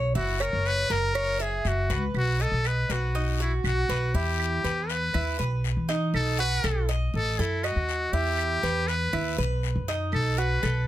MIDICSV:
0, 0, Header, 1, 5, 480
1, 0, Start_track
1, 0, Tempo, 498753
1, 148, Time_signature, 4, 2, 24, 8
1, 10465, End_track
2, 0, Start_track
2, 0, Title_t, "Cuban tres"
2, 0, Program_c, 0, 25
2, 0, Note_on_c, 0, 73, 70
2, 140, Note_off_c, 0, 73, 0
2, 146, Note_on_c, 0, 64, 78
2, 380, Note_off_c, 0, 64, 0
2, 385, Note_on_c, 0, 73, 73
2, 852, Note_off_c, 0, 73, 0
2, 868, Note_on_c, 0, 70, 71
2, 1101, Note_off_c, 0, 70, 0
2, 1107, Note_on_c, 0, 73, 76
2, 1341, Note_off_c, 0, 73, 0
2, 1347, Note_on_c, 0, 76, 74
2, 1813, Note_off_c, 0, 76, 0
2, 1828, Note_on_c, 0, 71, 75
2, 2294, Note_off_c, 0, 71, 0
2, 2307, Note_on_c, 0, 75, 65
2, 2773, Note_off_c, 0, 75, 0
2, 2790, Note_on_c, 0, 71, 72
2, 3022, Note_off_c, 0, 71, 0
2, 3031, Note_on_c, 0, 63, 73
2, 3263, Note_off_c, 0, 63, 0
2, 3271, Note_on_c, 0, 66, 68
2, 3736, Note_off_c, 0, 66, 0
2, 3748, Note_on_c, 0, 71, 79
2, 3981, Note_off_c, 0, 71, 0
2, 3990, Note_on_c, 0, 64, 75
2, 4455, Note_off_c, 0, 64, 0
2, 4470, Note_on_c, 0, 71, 66
2, 4935, Note_off_c, 0, 71, 0
2, 4948, Note_on_c, 0, 64, 75
2, 5181, Note_off_c, 0, 64, 0
2, 5186, Note_on_c, 0, 71, 72
2, 5653, Note_off_c, 0, 71, 0
2, 5665, Note_on_c, 0, 63, 87
2, 6133, Note_off_c, 0, 63, 0
2, 6145, Note_on_c, 0, 66, 79
2, 6380, Note_off_c, 0, 66, 0
2, 6388, Note_on_c, 0, 69, 68
2, 6621, Note_off_c, 0, 69, 0
2, 6628, Note_on_c, 0, 75, 81
2, 7094, Note_off_c, 0, 75, 0
2, 7113, Note_on_c, 0, 69, 75
2, 7343, Note_off_c, 0, 69, 0
2, 7352, Note_on_c, 0, 75, 63
2, 7816, Note_off_c, 0, 75, 0
2, 7827, Note_on_c, 0, 64, 79
2, 8293, Note_off_c, 0, 64, 0
2, 8309, Note_on_c, 0, 71, 69
2, 8774, Note_off_c, 0, 71, 0
2, 8786, Note_on_c, 0, 64, 76
2, 9020, Note_off_c, 0, 64, 0
2, 9030, Note_on_c, 0, 71, 73
2, 9494, Note_off_c, 0, 71, 0
2, 9511, Note_on_c, 0, 63, 90
2, 9975, Note_off_c, 0, 63, 0
2, 9990, Note_on_c, 0, 66, 69
2, 10221, Note_off_c, 0, 66, 0
2, 10229, Note_on_c, 0, 69, 67
2, 10461, Note_off_c, 0, 69, 0
2, 10465, End_track
3, 0, Start_track
3, 0, Title_t, "Muted trumpet"
3, 0, Program_c, 1, 59
3, 161, Note_on_c, 1, 66, 88
3, 401, Note_on_c, 1, 70, 102
3, 415, Note_off_c, 1, 66, 0
3, 644, Note_on_c, 1, 71, 118
3, 659, Note_off_c, 1, 70, 0
3, 884, Note_on_c, 1, 70, 104
3, 898, Note_off_c, 1, 71, 0
3, 1367, Note_on_c, 1, 68, 87
3, 1382, Note_off_c, 1, 70, 0
3, 1613, Note_on_c, 1, 66, 94
3, 1628, Note_off_c, 1, 68, 0
3, 1961, Note_off_c, 1, 66, 0
3, 2092, Note_on_c, 1, 66, 91
3, 2328, Note_on_c, 1, 69, 96
3, 2343, Note_off_c, 1, 66, 0
3, 2569, Note_on_c, 1, 71, 102
3, 2584, Note_off_c, 1, 69, 0
3, 2809, Note_on_c, 1, 66, 80
3, 2823, Note_off_c, 1, 71, 0
3, 3279, Note_off_c, 1, 66, 0
3, 3285, Note_on_c, 1, 64, 72
3, 3389, Note_off_c, 1, 64, 0
3, 3519, Note_on_c, 1, 66, 92
3, 3993, Note_on_c, 1, 67, 96
3, 4007, Note_off_c, 1, 66, 0
3, 4709, Note_on_c, 1, 71, 103
3, 4724, Note_off_c, 1, 67, 0
3, 5189, Note_off_c, 1, 71, 0
3, 5915, Note_on_c, 1, 69, 98
3, 6135, Note_off_c, 1, 69, 0
3, 6158, Note_on_c, 1, 71, 109
3, 6600, Note_off_c, 1, 71, 0
3, 6881, Note_on_c, 1, 69, 104
3, 7117, Note_on_c, 1, 64, 82
3, 7131, Note_off_c, 1, 69, 0
3, 7348, Note_on_c, 1, 66, 98
3, 7363, Note_off_c, 1, 64, 0
3, 7828, Note_on_c, 1, 67, 101
3, 7842, Note_off_c, 1, 66, 0
3, 8545, Note_on_c, 1, 71, 106
3, 8559, Note_off_c, 1, 67, 0
3, 9026, Note_off_c, 1, 71, 0
3, 9753, Note_on_c, 1, 69, 94
3, 9992, Note_on_c, 1, 71, 108
3, 10006, Note_off_c, 1, 69, 0
3, 10465, Note_off_c, 1, 71, 0
3, 10465, End_track
4, 0, Start_track
4, 0, Title_t, "Upright bass"
4, 0, Program_c, 2, 32
4, 0, Note_on_c, 2, 35, 92
4, 135, Note_off_c, 2, 35, 0
4, 146, Note_on_c, 2, 30, 96
4, 489, Note_off_c, 2, 30, 0
4, 507, Note_on_c, 2, 30, 81
4, 850, Note_off_c, 2, 30, 0
4, 862, Note_on_c, 2, 30, 81
4, 1549, Note_off_c, 2, 30, 0
4, 1585, Note_on_c, 2, 30, 88
4, 1823, Note_on_c, 2, 37, 76
4, 1838, Note_off_c, 2, 30, 0
4, 2054, Note_off_c, 2, 37, 0
4, 2061, Note_on_c, 2, 35, 99
4, 2406, Note_off_c, 2, 35, 0
4, 2419, Note_on_c, 2, 35, 82
4, 2765, Note_off_c, 2, 35, 0
4, 2783, Note_on_c, 2, 35, 74
4, 3470, Note_off_c, 2, 35, 0
4, 3502, Note_on_c, 2, 35, 90
4, 3733, Note_off_c, 2, 35, 0
4, 3741, Note_on_c, 2, 35, 78
4, 3973, Note_off_c, 2, 35, 0
4, 3986, Note_on_c, 2, 40, 92
4, 4444, Note_off_c, 2, 40, 0
4, 4465, Note_on_c, 2, 40, 87
4, 4923, Note_off_c, 2, 40, 0
4, 4950, Note_on_c, 2, 39, 87
4, 5178, Note_off_c, 2, 39, 0
4, 5190, Note_on_c, 2, 35, 89
4, 5532, Note_off_c, 2, 35, 0
4, 5547, Note_on_c, 2, 52, 77
4, 5890, Note_off_c, 2, 52, 0
4, 5904, Note_on_c, 2, 35, 90
4, 6362, Note_off_c, 2, 35, 0
4, 6387, Note_on_c, 2, 35, 90
4, 6844, Note_off_c, 2, 35, 0
4, 6869, Note_on_c, 2, 33, 92
4, 7097, Note_off_c, 2, 33, 0
4, 7109, Note_on_c, 2, 42, 90
4, 7451, Note_off_c, 2, 42, 0
4, 7467, Note_on_c, 2, 39, 82
4, 7809, Note_off_c, 2, 39, 0
4, 7822, Note_on_c, 2, 40, 91
4, 8281, Note_off_c, 2, 40, 0
4, 8305, Note_on_c, 2, 40, 87
4, 8763, Note_off_c, 2, 40, 0
4, 8787, Note_on_c, 2, 39, 94
4, 9015, Note_off_c, 2, 39, 0
4, 9028, Note_on_c, 2, 35, 94
4, 9370, Note_off_c, 2, 35, 0
4, 9386, Note_on_c, 2, 42, 86
4, 9729, Note_off_c, 2, 42, 0
4, 9746, Note_on_c, 2, 35, 90
4, 10202, Note_off_c, 2, 35, 0
4, 10229, Note_on_c, 2, 35, 91
4, 10465, Note_off_c, 2, 35, 0
4, 10465, End_track
5, 0, Start_track
5, 0, Title_t, "Drums"
5, 150, Note_on_c, 9, 74, 72
5, 247, Note_off_c, 9, 74, 0
5, 390, Note_on_c, 9, 75, 72
5, 486, Note_off_c, 9, 75, 0
5, 630, Note_on_c, 9, 73, 68
5, 726, Note_off_c, 9, 73, 0
5, 871, Note_on_c, 9, 73, 64
5, 967, Note_off_c, 9, 73, 0
5, 1109, Note_on_c, 9, 74, 73
5, 1110, Note_on_c, 9, 75, 67
5, 1205, Note_off_c, 9, 74, 0
5, 1206, Note_off_c, 9, 75, 0
5, 1586, Note_on_c, 9, 73, 70
5, 1683, Note_off_c, 9, 73, 0
5, 1828, Note_on_c, 9, 73, 63
5, 1924, Note_off_c, 9, 73, 0
5, 2066, Note_on_c, 9, 74, 69
5, 2071, Note_on_c, 9, 75, 58
5, 2162, Note_off_c, 9, 74, 0
5, 2167, Note_off_c, 9, 75, 0
5, 2544, Note_on_c, 9, 73, 70
5, 2553, Note_on_c, 9, 75, 64
5, 2641, Note_off_c, 9, 73, 0
5, 2649, Note_off_c, 9, 75, 0
5, 2788, Note_on_c, 9, 73, 74
5, 2884, Note_off_c, 9, 73, 0
5, 3030, Note_on_c, 9, 74, 67
5, 3127, Note_off_c, 9, 74, 0
5, 3509, Note_on_c, 9, 73, 69
5, 3509, Note_on_c, 9, 75, 70
5, 3606, Note_off_c, 9, 73, 0
5, 3606, Note_off_c, 9, 75, 0
5, 3751, Note_on_c, 9, 73, 61
5, 3847, Note_off_c, 9, 73, 0
5, 3988, Note_on_c, 9, 74, 73
5, 4084, Note_off_c, 9, 74, 0
5, 4233, Note_on_c, 9, 75, 71
5, 4329, Note_off_c, 9, 75, 0
5, 4471, Note_on_c, 9, 73, 73
5, 4567, Note_off_c, 9, 73, 0
5, 4711, Note_on_c, 9, 73, 69
5, 4807, Note_off_c, 9, 73, 0
5, 4948, Note_on_c, 9, 75, 71
5, 4950, Note_on_c, 9, 74, 67
5, 5045, Note_off_c, 9, 75, 0
5, 5046, Note_off_c, 9, 74, 0
5, 5431, Note_on_c, 9, 73, 68
5, 5527, Note_off_c, 9, 73, 0
5, 5667, Note_on_c, 9, 73, 66
5, 5764, Note_off_c, 9, 73, 0
5, 5907, Note_on_c, 9, 74, 78
5, 5913, Note_on_c, 9, 75, 66
5, 6003, Note_off_c, 9, 74, 0
5, 6009, Note_off_c, 9, 75, 0
5, 6389, Note_on_c, 9, 73, 72
5, 6392, Note_on_c, 9, 75, 65
5, 6486, Note_off_c, 9, 73, 0
5, 6489, Note_off_c, 9, 75, 0
5, 6629, Note_on_c, 9, 73, 67
5, 6726, Note_off_c, 9, 73, 0
5, 6868, Note_on_c, 9, 74, 69
5, 6964, Note_off_c, 9, 74, 0
5, 7348, Note_on_c, 9, 73, 64
5, 7352, Note_on_c, 9, 75, 72
5, 7444, Note_off_c, 9, 73, 0
5, 7448, Note_off_c, 9, 75, 0
5, 7591, Note_on_c, 9, 73, 66
5, 7687, Note_off_c, 9, 73, 0
5, 7831, Note_on_c, 9, 74, 71
5, 7928, Note_off_c, 9, 74, 0
5, 8070, Note_on_c, 9, 75, 71
5, 8166, Note_off_c, 9, 75, 0
5, 8310, Note_on_c, 9, 73, 70
5, 8406, Note_off_c, 9, 73, 0
5, 8549, Note_on_c, 9, 73, 68
5, 8645, Note_off_c, 9, 73, 0
5, 8787, Note_on_c, 9, 74, 75
5, 8790, Note_on_c, 9, 75, 68
5, 8883, Note_off_c, 9, 74, 0
5, 8887, Note_off_c, 9, 75, 0
5, 9271, Note_on_c, 9, 73, 64
5, 9367, Note_off_c, 9, 73, 0
5, 9510, Note_on_c, 9, 73, 67
5, 9607, Note_off_c, 9, 73, 0
5, 9747, Note_on_c, 9, 74, 69
5, 9749, Note_on_c, 9, 75, 66
5, 9843, Note_off_c, 9, 74, 0
5, 9846, Note_off_c, 9, 75, 0
5, 10228, Note_on_c, 9, 73, 73
5, 10229, Note_on_c, 9, 75, 63
5, 10324, Note_off_c, 9, 73, 0
5, 10325, Note_off_c, 9, 75, 0
5, 10465, End_track
0, 0, End_of_file